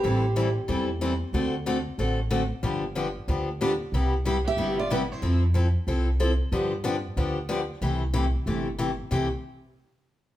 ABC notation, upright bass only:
X:1
M:4/4
L:1/8
Q:"Swing" 1/4=185
K:C
V:1 name="Upright bass" clef=bass
A,,,4 E,,4 | D,,4 A,,,4 | G,,,4 D,,4 | C,,4 G,,,4 |
F,,4 C,,4 | G,,4 D,,4 | C,,4 G,,,4 | C,, z6 z |]